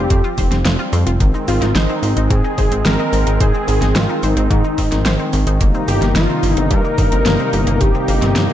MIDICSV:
0, 0, Header, 1, 6, 480
1, 0, Start_track
1, 0, Tempo, 550459
1, 1049, Time_signature, 4, 2, 24, 8
1, 7439, End_track
2, 0, Start_track
2, 0, Title_t, "Analog synth lead"
2, 0, Program_c, 0, 81
2, 0, Note_on_c, 0, 67, 95
2, 774, Note_off_c, 0, 67, 0
2, 1291, Note_on_c, 0, 65, 99
2, 1531, Note_on_c, 0, 63, 98
2, 1545, Note_off_c, 0, 65, 0
2, 2012, Note_on_c, 0, 68, 110
2, 2025, Note_off_c, 0, 63, 0
2, 2491, Note_off_c, 0, 68, 0
2, 2495, Note_on_c, 0, 70, 113
2, 2974, Note_on_c, 0, 68, 114
2, 2987, Note_off_c, 0, 70, 0
2, 3455, Note_on_c, 0, 65, 99
2, 3468, Note_off_c, 0, 68, 0
2, 3693, Note_on_c, 0, 63, 93
2, 3706, Note_off_c, 0, 65, 0
2, 4651, Note_off_c, 0, 63, 0
2, 5127, Note_on_c, 0, 67, 102
2, 5351, Note_off_c, 0, 67, 0
2, 5368, Note_on_c, 0, 65, 101
2, 5716, Note_off_c, 0, 65, 0
2, 5716, Note_on_c, 0, 63, 101
2, 5848, Note_on_c, 0, 70, 127
2, 5861, Note_off_c, 0, 63, 0
2, 6809, Note_on_c, 0, 67, 109
2, 6822, Note_off_c, 0, 70, 0
2, 7439, Note_off_c, 0, 67, 0
2, 7439, End_track
3, 0, Start_track
3, 0, Title_t, "Synth arpeggio sound"
3, 0, Program_c, 1, 84
3, 89, Note_on_c, 1, 60, 86
3, 203, Note_off_c, 1, 60, 0
3, 210, Note_on_c, 1, 65, 79
3, 299, Note_off_c, 1, 65, 0
3, 329, Note_on_c, 1, 72, 77
3, 419, Note_off_c, 1, 72, 0
3, 448, Note_on_c, 1, 60, 80
3, 539, Note_off_c, 1, 60, 0
3, 569, Note_on_c, 1, 53, 82
3, 659, Note_off_c, 1, 53, 0
3, 689, Note_on_c, 1, 65, 79
3, 779, Note_off_c, 1, 65, 0
3, 808, Note_on_c, 1, 60, 78
3, 923, Note_off_c, 1, 60, 0
3, 929, Note_on_c, 1, 65, 80
3, 1019, Note_off_c, 1, 65, 0
3, 1049, Note_on_c, 1, 51, 85
3, 1139, Note_off_c, 1, 51, 0
3, 1170, Note_on_c, 1, 63, 75
3, 1259, Note_off_c, 1, 63, 0
3, 1290, Note_on_c, 1, 60, 76
3, 1404, Note_off_c, 1, 60, 0
3, 1410, Note_on_c, 1, 63, 79
3, 1500, Note_off_c, 1, 63, 0
3, 1530, Note_on_c, 1, 72, 86
3, 1620, Note_off_c, 1, 72, 0
3, 1651, Note_on_c, 1, 60, 77
3, 1740, Note_off_c, 1, 60, 0
3, 1771, Note_on_c, 1, 51, 77
3, 1860, Note_off_c, 1, 51, 0
3, 1890, Note_on_c, 1, 63, 78
3, 1980, Note_off_c, 1, 63, 0
3, 2010, Note_on_c, 1, 60, 83
3, 2123, Note_off_c, 1, 60, 0
3, 2130, Note_on_c, 1, 63, 78
3, 2220, Note_off_c, 1, 63, 0
3, 2250, Note_on_c, 1, 72, 81
3, 2340, Note_off_c, 1, 72, 0
3, 2371, Note_on_c, 1, 60, 80
3, 2460, Note_off_c, 1, 60, 0
3, 2490, Note_on_c, 1, 51, 83
3, 2579, Note_off_c, 1, 51, 0
3, 2611, Note_on_c, 1, 63, 78
3, 2700, Note_off_c, 1, 63, 0
3, 2731, Note_on_c, 1, 60, 80
3, 2844, Note_off_c, 1, 60, 0
3, 2851, Note_on_c, 1, 63, 77
3, 2940, Note_off_c, 1, 63, 0
3, 2972, Note_on_c, 1, 72, 86
3, 3060, Note_off_c, 1, 72, 0
3, 3091, Note_on_c, 1, 60, 77
3, 3180, Note_off_c, 1, 60, 0
3, 3210, Note_on_c, 1, 51, 77
3, 3300, Note_off_c, 1, 51, 0
3, 3330, Note_on_c, 1, 63, 74
3, 3419, Note_off_c, 1, 63, 0
3, 3451, Note_on_c, 1, 60, 85
3, 3564, Note_off_c, 1, 60, 0
3, 3571, Note_on_c, 1, 63, 78
3, 3660, Note_off_c, 1, 63, 0
3, 3691, Note_on_c, 1, 72, 78
3, 3780, Note_off_c, 1, 72, 0
3, 3809, Note_on_c, 1, 60, 77
3, 3899, Note_off_c, 1, 60, 0
3, 3929, Note_on_c, 1, 51, 85
3, 4019, Note_off_c, 1, 51, 0
3, 4050, Note_on_c, 1, 63, 78
3, 4139, Note_off_c, 1, 63, 0
3, 4171, Note_on_c, 1, 60, 80
3, 4284, Note_off_c, 1, 60, 0
3, 4291, Note_on_c, 1, 63, 76
3, 4380, Note_off_c, 1, 63, 0
3, 4411, Note_on_c, 1, 72, 85
3, 4500, Note_off_c, 1, 72, 0
3, 4530, Note_on_c, 1, 60, 77
3, 4619, Note_off_c, 1, 60, 0
3, 4650, Note_on_c, 1, 51, 81
3, 4739, Note_off_c, 1, 51, 0
3, 4771, Note_on_c, 1, 63, 77
3, 4860, Note_off_c, 1, 63, 0
3, 4891, Note_on_c, 1, 58, 83
3, 5004, Note_off_c, 1, 58, 0
3, 5010, Note_on_c, 1, 60, 77
3, 5100, Note_off_c, 1, 60, 0
3, 5130, Note_on_c, 1, 67, 79
3, 5219, Note_off_c, 1, 67, 0
3, 5249, Note_on_c, 1, 58, 78
3, 5339, Note_off_c, 1, 58, 0
3, 5370, Note_on_c, 1, 51, 83
3, 5459, Note_off_c, 1, 51, 0
3, 5489, Note_on_c, 1, 60, 77
3, 5579, Note_off_c, 1, 60, 0
3, 5609, Note_on_c, 1, 58, 78
3, 5723, Note_off_c, 1, 58, 0
3, 5730, Note_on_c, 1, 60, 79
3, 5819, Note_off_c, 1, 60, 0
3, 5850, Note_on_c, 1, 67, 83
3, 5939, Note_off_c, 1, 67, 0
3, 5969, Note_on_c, 1, 58, 77
3, 6059, Note_off_c, 1, 58, 0
3, 6090, Note_on_c, 1, 51, 79
3, 6180, Note_off_c, 1, 51, 0
3, 6210, Note_on_c, 1, 60, 79
3, 6299, Note_off_c, 1, 60, 0
3, 6330, Note_on_c, 1, 58, 84
3, 6444, Note_off_c, 1, 58, 0
3, 6450, Note_on_c, 1, 60, 77
3, 6540, Note_off_c, 1, 60, 0
3, 6570, Note_on_c, 1, 67, 78
3, 6659, Note_off_c, 1, 67, 0
3, 6690, Note_on_c, 1, 58, 78
3, 6779, Note_off_c, 1, 58, 0
3, 6809, Note_on_c, 1, 51, 85
3, 6899, Note_off_c, 1, 51, 0
3, 6929, Note_on_c, 1, 60, 77
3, 7019, Note_off_c, 1, 60, 0
3, 7049, Note_on_c, 1, 58, 80
3, 7163, Note_off_c, 1, 58, 0
3, 7170, Note_on_c, 1, 60, 78
3, 7259, Note_off_c, 1, 60, 0
3, 7291, Note_on_c, 1, 67, 83
3, 7380, Note_off_c, 1, 67, 0
3, 7410, Note_on_c, 1, 58, 76
3, 7439, Note_off_c, 1, 58, 0
3, 7439, End_track
4, 0, Start_track
4, 0, Title_t, "Analog synth pad"
4, 0, Program_c, 2, 89
4, 0, Note_on_c, 2, 53, 85
4, 0, Note_on_c, 2, 55, 80
4, 0, Note_on_c, 2, 60, 96
4, 1014, Note_off_c, 2, 55, 0
4, 1014, Note_off_c, 2, 60, 0
4, 1015, Note_off_c, 2, 53, 0
4, 1051, Note_on_c, 2, 60, 96
4, 1052, Note_on_c, 2, 51, 85
4, 1052, Note_on_c, 2, 56, 80
4, 4855, Note_off_c, 2, 56, 0
4, 4855, Note_off_c, 2, 60, 0
4, 4888, Note_on_c, 2, 55, 83
4, 4888, Note_on_c, 2, 58, 80
4, 4889, Note_on_c, 2, 48, 88
4, 4889, Note_on_c, 2, 63, 95
4, 7439, Note_off_c, 2, 48, 0
4, 7439, Note_off_c, 2, 51, 0
4, 7439, Note_off_c, 2, 55, 0
4, 7439, Note_off_c, 2, 58, 0
4, 7439, Note_off_c, 2, 63, 0
4, 7439, End_track
5, 0, Start_track
5, 0, Title_t, "Analog synth bass"
5, 0, Program_c, 3, 38
5, 89, Note_on_c, 3, 41, 106
5, 191, Note_off_c, 3, 41, 0
5, 329, Note_on_c, 3, 29, 96
5, 431, Note_off_c, 3, 29, 0
5, 448, Note_on_c, 3, 29, 79
5, 550, Note_off_c, 3, 29, 0
5, 568, Note_on_c, 3, 29, 99
5, 670, Note_off_c, 3, 29, 0
5, 808, Note_on_c, 3, 41, 99
5, 910, Note_off_c, 3, 41, 0
5, 929, Note_on_c, 3, 29, 81
5, 1031, Note_off_c, 3, 29, 0
5, 1050, Note_on_c, 3, 32, 100
5, 1151, Note_off_c, 3, 32, 0
5, 1288, Note_on_c, 3, 32, 95
5, 1390, Note_off_c, 3, 32, 0
5, 1408, Note_on_c, 3, 32, 82
5, 1510, Note_off_c, 3, 32, 0
5, 1528, Note_on_c, 3, 32, 103
5, 1630, Note_off_c, 3, 32, 0
5, 1767, Note_on_c, 3, 32, 95
5, 1870, Note_off_c, 3, 32, 0
5, 1888, Note_on_c, 3, 32, 82
5, 1990, Note_off_c, 3, 32, 0
5, 2009, Note_on_c, 3, 44, 107
5, 2111, Note_off_c, 3, 44, 0
5, 2249, Note_on_c, 3, 32, 96
5, 2351, Note_off_c, 3, 32, 0
5, 2367, Note_on_c, 3, 32, 81
5, 2470, Note_off_c, 3, 32, 0
5, 2488, Note_on_c, 3, 32, 103
5, 2590, Note_off_c, 3, 32, 0
5, 2728, Note_on_c, 3, 32, 99
5, 2830, Note_off_c, 3, 32, 0
5, 2847, Note_on_c, 3, 32, 85
5, 2950, Note_off_c, 3, 32, 0
5, 2969, Note_on_c, 3, 32, 102
5, 3071, Note_off_c, 3, 32, 0
5, 3207, Note_on_c, 3, 32, 95
5, 3309, Note_off_c, 3, 32, 0
5, 3327, Note_on_c, 3, 32, 82
5, 3430, Note_off_c, 3, 32, 0
5, 3446, Note_on_c, 3, 32, 103
5, 3549, Note_off_c, 3, 32, 0
5, 3687, Note_on_c, 3, 32, 94
5, 3789, Note_off_c, 3, 32, 0
5, 3807, Note_on_c, 3, 32, 82
5, 3909, Note_off_c, 3, 32, 0
5, 3928, Note_on_c, 3, 44, 108
5, 4030, Note_off_c, 3, 44, 0
5, 4169, Note_on_c, 3, 32, 94
5, 4270, Note_off_c, 3, 32, 0
5, 4289, Note_on_c, 3, 32, 82
5, 4391, Note_off_c, 3, 32, 0
5, 4409, Note_on_c, 3, 32, 103
5, 4510, Note_off_c, 3, 32, 0
5, 4648, Note_on_c, 3, 32, 98
5, 4750, Note_off_c, 3, 32, 0
5, 4768, Note_on_c, 3, 32, 87
5, 4870, Note_off_c, 3, 32, 0
5, 4888, Note_on_c, 3, 31, 103
5, 4990, Note_off_c, 3, 31, 0
5, 5127, Note_on_c, 3, 31, 94
5, 5230, Note_off_c, 3, 31, 0
5, 5247, Note_on_c, 3, 31, 82
5, 5350, Note_off_c, 3, 31, 0
5, 5367, Note_on_c, 3, 31, 105
5, 5470, Note_off_c, 3, 31, 0
5, 5607, Note_on_c, 3, 31, 95
5, 5710, Note_off_c, 3, 31, 0
5, 5728, Note_on_c, 3, 31, 83
5, 5830, Note_off_c, 3, 31, 0
5, 5849, Note_on_c, 3, 43, 106
5, 5950, Note_off_c, 3, 43, 0
5, 6088, Note_on_c, 3, 31, 97
5, 6190, Note_off_c, 3, 31, 0
5, 6208, Note_on_c, 3, 31, 82
5, 6310, Note_off_c, 3, 31, 0
5, 6328, Note_on_c, 3, 31, 100
5, 6430, Note_off_c, 3, 31, 0
5, 6567, Note_on_c, 3, 31, 98
5, 6670, Note_off_c, 3, 31, 0
5, 6688, Note_on_c, 3, 31, 87
5, 6790, Note_off_c, 3, 31, 0
5, 6808, Note_on_c, 3, 31, 101
5, 6910, Note_off_c, 3, 31, 0
5, 7048, Note_on_c, 3, 31, 96
5, 7150, Note_off_c, 3, 31, 0
5, 7167, Note_on_c, 3, 31, 81
5, 7270, Note_off_c, 3, 31, 0
5, 7287, Note_on_c, 3, 31, 108
5, 7390, Note_off_c, 3, 31, 0
5, 7439, End_track
6, 0, Start_track
6, 0, Title_t, "Drums"
6, 89, Note_on_c, 9, 36, 123
6, 90, Note_on_c, 9, 42, 93
6, 90, Note_on_c, 9, 69, 40
6, 177, Note_off_c, 9, 36, 0
6, 177, Note_off_c, 9, 42, 0
6, 177, Note_off_c, 9, 69, 0
6, 210, Note_on_c, 9, 69, 20
6, 297, Note_off_c, 9, 69, 0
6, 330, Note_on_c, 9, 36, 65
6, 330, Note_on_c, 9, 46, 78
6, 330, Note_on_c, 9, 69, 69
6, 417, Note_off_c, 9, 36, 0
6, 417, Note_off_c, 9, 46, 0
6, 417, Note_off_c, 9, 69, 0
6, 450, Note_on_c, 9, 38, 37
6, 450, Note_on_c, 9, 42, 65
6, 450, Note_on_c, 9, 69, 29
6, 537, Note_off_c, 9, 38, 0
6, 537, Note_off_c, 9, 42, 0
6, 537, Note_off_c, 9, 69, 0
6, 570, Note_on_c, 9, 38, 125
6, 570, Note_on_c, 9, 42, 93
6, 570, Note_on_c, 9, 69, 39
6, 657, Note_off_c, 9, 38, 0
6, 657, Note_off_c, 9, 42, 0
6, 657, Note_off_c, 9, 69, 0
6, 690, Note_on_c, 9, 69, 19
6, 777, Note_off_c, 9, 69, 0
6, 810, Note_on_c, 9, 46, 73
6, 810, Note_on_c, 9, 69, 67
6, 897, Note_off_c, 9, 46, 0
6, 897, Note_off_c, 9, 69, 0
6, 930, Note_on_c, 9, 42, 64
6, 930, Note_on_c, 9, 69, 29
6, 1017, Note_off_c, 9, 42, 0
6, 1017, Note_off_c, 9, 69, 0
6, 1050, Note_on_c, 9, 36, 120
6, 1050, Note_on_c, 9, 42, 92
6, 1050, Note_on_c, 9, 69, 41
6, 1137, Note_off_c, 9, 36, 0
6, 1137, Note_off_c, 9, 42, 0
6, 1137, Note_off_c, 9, 69, 0
6, 1170, Note_on_c, 9, 69, 21
6, 1257, Note_off_c, 9, 69, 0
6, 1290, Note_on_c, 9, 46, 75
6, 1290, Note_on_c, 9, 69, 70
6, 1377, Note_off_c, 9, 46, 0
6, 1377, Note_off_c, 9, 69, 0
6, 1410, Note_on_c, 9, 38, 38
6, 1410, Note_on_c, 9, 42, 64
6, 1410, Note_on_c, 9, 69, 30
6, 1497, Note_off_c, 9, 38, 0
6, 1497, Note_off_c, 9, 42, 0
6, 1497, Note_off_c, 9, 69, 0
6, 1530, Note_on_c, 9, 38, 123
6, 1530, Note_on_c, 9, 42, 92
6, 1530, Note_on_c, 9, 69, 40
6, 1617, Note_off_c, 9, 38, 0
6, 1617, Note_off_c, 9, 42, 0
6, 1617, Note_off_c, 9, 69, 0
6, 1650, Note_on_c, 9, 69, 20
6, 1737, Note_off_c, 9, 69, 0
6, 1770, Note_on_c, 9, 46, 76
6, 1770, Note_on_c, 9, 69, 69
6, 1857, Note_off_c, 9, 46, 0
6, 1857, Note_off_c, 9, 69, 0
6, 1890, Note_on_c, 9, 42, 66
6, 1890, Note_on_c, 9, 69, 30
6, 1977, Note_off_c, 9, 42, 0
6, 1977, Note_off_c, 9, 69, 0
6, 2010, Note_on_c, 9, 36, 121
6, 2010, Note_on_c, 9, 42, 91
6, 2010, Note_on_c, 9, 69, 41
6, 2097, Note_off_c, 9, 36, 0
6, 2098, Note_off_c, 9, 42, 0
6, 2098, Note_off_c, 9, 69, 0
6, 2130, Note_on_c, 9, 69, 20
6, 2217, Note_off_c, 9, 69, 0
6, 2250, Note_on_c, 9, 36, 109
6, 2250, Note_on_c, 9, 46, 79
6, 2250, Note_on_c, 9, 69, 70
6, 2337, Note_off_c, 9, 36, 0
6, 2337, Note_off_c, 9, 46, 0
6, 2337, Note_off_c, 9, 69, 0
6, 2369, Note_on_c, 9, 42, 64
6, 2369, Note_on_c, 9, 69, 30
6, 2457, Note_off_c, 9, 42, 0
6, 2457, Note_off_c, 9, 69, 0
6, 2489, Note_on_c, 9, 38, 124
6, 2489, Note_on_c, 9, 42, 89
6, 2489, Note_on_c, 9, 69, 41
6, 2577, Note_off_c, 9, 38, 0
6, 2577, Note_off_c, 9, 42, 0
6, 2577, Note_off_c, 9, 69, 0
6, 2609, Note_on_c, 9, 69, 19
6, 2696, Note_off_c, 9, 69, 0
6, 2729, Note_on_c, 9, 46, 76
6, 2729, Note_on_c, 9, 69, 69
6, 2816, Note_off_c, 9, 46, 0
6, 2816, Note_off_c, 9, 69, 0
6, 2850, Note_on_c, 9, 42, 63
6, 2850, Note_on_c, 9, 69, 30
6, 2937, Note_off_c, 9, 42, 0
6, 2937, Note_off_c, 9, 69, 0
6, 2969, Note_on_c, 9, 36, 116
6, 2969, Note_on_c, 9, 42, 89
6, 2969, Note_on_c, 9, 69, 42
6, 3056, Note_off_c, 9, 42, 0
6, 3056, Note_off_c, 9, 69, 0
6, 3057, Note_off_c, 9, 36, 0
6, 3089, Note_on_c, 9, 69, 21
6, 3176, Note_off_c, 9, 69, 0
6, 3210, Note_on_c, 9, 46, 77
6, 3210, Note_on_c, 9, 69, 74
6, 3297, Note_off_c, 9, 46, 0
6, 3297, Note_off_c, 9, 69, 0
6, 3329, Note_on_c, 9, 38, 36
6, 3329, Note_on_c, 9, 42, 65
6, 3329, Note_on_c, 9, 69, 32
6, 3416, Note_off_c, 9, 38, 0
6, 3416, Note_off_c, 9, 42, 0
6, 3416, Note_off_c, 9, 69, 0
6, 3450, Note_on_c, 9, 38, 117
6, 3450, Note_on_c, 9, 42, 91
6, 3450, Note_on_c, 9, 69, 42
6, 3537, Note_off_c, 9, 38, 0
6, 3537, Note_off_c, 9, 42, 0
6, 3537, Note_off_c, 9, 69, 0
6, 3570, Note_on_c, 9, 69, 20
6, 3657, Note_off_c, 9, 69, 0
6, 3690, Note_on_c, 9, 46, 76
6, 3690, Note_on_c, 9, 69, 74
6, 3777, Note_off_c, 9, 46, 0
6, 3777, Note_off_c, 9, 69, 0
6, 3809, Note_on_c, 9, 42, 65
6, 3809, Note_on_c, 9, 69, 31
6, 3896, Note_off_c, 9, 42, 0
6, 3896, Note_off_c, 9, 69, 0
6, 3929, Note_on_c, 9, 36, 117
6, 3930, Note_on_c, 9, 42, 89
6, 3930, Note_on_c, 9, 69, 43
6, 4016, Note_off_c, 9, 36, 0
6, 4017, Note_off_c, 9, 42, 0
6, 4017, Note_off_c, 9, 69, 0
6, 4049, Note_on_c, 9, 69, 21
6, 4137, Note_off_c, 9, 69, 0
6, 4169, Note_on_c, 9, 36, 63
6, 4169, Note_on_c, 9, 46, 82
6, 4169, Note_on_c, 9, 69, 75
6, 4256, Note_off_c, 9, 36, 0
6, 4256, Note_off_c, 9, 46, 0
6, 4256, Note_off_c, 9, 69, 0
6, 4288, Note_on_c, 9, 38, 36
6, 4288, Note_on_c, 9, 42, 62
6, 4288, Note_on_c, 9, 69, 30
6, 4375, Note_off_c, 9, 38, 0
6, 4375, Note_off_c, 9, 42, 0
6, 4375, Note_off_c, 9, 69, 0
6, 4409, Note_on_c, 9, 38, 115
6, 4409, Note_on_c, 9, 42, 90
6, 4409, Note_on_c, 9, 69, 41
6, 4496, Note_off_c, 9, 38, 0
6, 4496, Note_off_c, 9, 42, 0
6, 4496, Note_off_c, 9, 69, 0
6, 4528, Note_on_c, 9, 69, 21
6, 4616, Note_off_c, 9, 69, 0
6, 4648, Note_on_c, 9, 46, 78
6, 4648, Note_on_c, 9, 69, 74
6, 4736, Note_off_c, 9, 46, 0
6, 4736, Note_off_c, 9, 69, 0
6, 4768, Note_on_c, 9, 42, 61
6, 4768, Note_on_c, 9, 69, 31
6, 4856, Note_off_c, 9, 42, 0
6, 4856, Note_off_c, 9, 69, 0
6, 4889, Note_on_c, 9, 36, 115
6, 4889, Note_on_c, 9, 42, 92
6, 4889, Note_on_c, 9, 69, 43
6, 4976, Note_off_c, 9, 36, 0
6, 4976, Note_off_c, 9, 42, 0
6, 4976, Note_off_c, 9, 69, 0
6, 5009, Note_on_c, 9, 69, 22
6, 5096, Note_off_c, 9, 69, 0
6, 5128, Note_on_c, 9, 46, 83
6, 5128, Note_on_c, 9, 69, 73
6, 5216, Note_off_c, 9, 46, 0
6, 5216, Note_off_c, 9, 69, 0
6, 5248, Note_on_c, 9, 38, 35
6, 5248, Note_on_c, 9, 42, 65
6, 5248, Note_on_c, 9, 69, 33
6, 5336, Note_off_c, 9, 38, 0
6, 5336, Note_off_c, 9, 42, 0
6, 5336, Note_off_c, 9, 69, 0
6, 5368, Note_on_c, 9, 38, 117
6, 5368, Note_on_c, 9, 42, 93
6, 5368, Note_on_c, 9, 69, 42
6, 5455, Note_off_c, 9, 38, 0
6, 5455, Note_off_c, 9, 42, 0
6, 5455, Note_off_c, 9, 69, 0
6, 5488, Note_on_c, 9, 69, 21
6, 5576, Note_off_c, 9, 69, 0
6, 5608, Note_on_c, 9, 46, 81
6, 5608, Note_on_c, 9, 69, 75
6, 5695, Note_off_c, 9, 46, 0
6, 5695, Note_off_c, 9, 69, 0
6, 5728, Note_on_c, 9, 42, 66
6, 5728, Note_on_c, 9, 69, 33
6, 5815, Note_off_c, 9, 42, 0
6, 5815, Note_off_c, 9, 69, 0
6, 5848, Note_on_c, 9, 36, 112
6, 5848, Note_on_c, 9, 42, 93
6, 5848, Note_on_c, 9, 69, 43
6, 5935, Note_off_c, 9, 42, 0
6, 5935, Note_off_c, 9, 69, 0
6, 5936, Note_off_c, 9, 36, 0
6, 5969, Note_on_c, 9, 69, 21
6, 6056, Note_off_c, 9, 69, 0
6, 6088, Note_on_c, 9, 36, 105
6, 6088, Note_on_c, 9, 46, 84
6, 6088, Note_on_c, 9, 69, 74
6, 6175, Note_off_c, 9, 46, 0
6, 6175, Note_off_c, 9, 69, 0
6, 6176, Note_off_c, 9, 36, 0
6, 6208, Note_on_c, 9, 42, 65
6, 6208, Note_on_c, 9, 69, 31
6, 6295, Note_off_c, 9, 42, 0
6, 6295, Note_off_c, 9, 69, 0
6, 6328, Note_on_c, 9, 38, 115
6, 6328, Note_on_c, 9, 42, 91
6, 6328, Note_on_c, 9, 69, 42
6, 6415, Note_off_c, 9, 38, 0
6, 6415, Note_off_c, 9, 42, 0
6, 6415, Note_off_c, 9, 69, 0
6, 6448, Note_on_c, 9, 69, 21
6, 6535, Note_off_c, 9, 69, 0
6, 6567, Note_on_c, 9, 46, 81
6, 6567, Note_on_c, 9, 69, 73
6, 6655, Note_off_c, 9, 46, 0
6, 6655, Note_off_c, 9, 69, 0
6, 6688, Note_on_c, 9, 42, 65
6, 6688, Note_on_c, 9, 69, 31
6, 6775, Note_off_c, 9, 42, 0
6, 6775, Note_off_c, 9, 69, 0
6, 6808, Note_on_c, 9, 36, 116
6, 6808, Note_on_c, 9, 42, 96
6, 6808, Note_on_c, 9, 69, 42
6, 6895, Note_off_c, 9, 36, 0
6, 6895, Note_off_c, 9, 42, 0
6, 6895, Note_off_c, 9, 69, 0
6, 6928, Note_on_c, 9, 69, 21
6, 7015, Note_off_c, 9, 69, 0
6, 7048, Note_on_c, 9, 46, 83
6, 7048, Note_on_c, 9, 69, 71
6, 7135, Note_off_c, 9, 46, 0
6, 7135, Note_off_c, 9, 69, 0
6, 7168, Note_on_c, 9, 38, 36
6, 7168, Note_on_c, 9, 42, 70
6, 7168, Note_on_c, 9, 69, 31
6, 7256, Note_off_c, 9, 38, 0
6, 7256, Note_off_c, 9, 42, 0
6, 7256, Note_off_c, 9, 69, 0
6, 7288, Note_on_c, 9, 38, 117
6, 7288, Note_on_c, 9, 42, 99
6, 7288, Note_on_c, 9, 69, 42
6, 7375, Note_off_c, 9, 38, 0
6, 7375, Note_off_c, 9, 42, 0
6, 7375, Note_off_c, 9, 69, 0
6, 7408, Note_on_c, 9, 69, 20
6, 7439, Note_off_c, 9, 69, 0
6, 7439, End_track
0, 0, End_of_file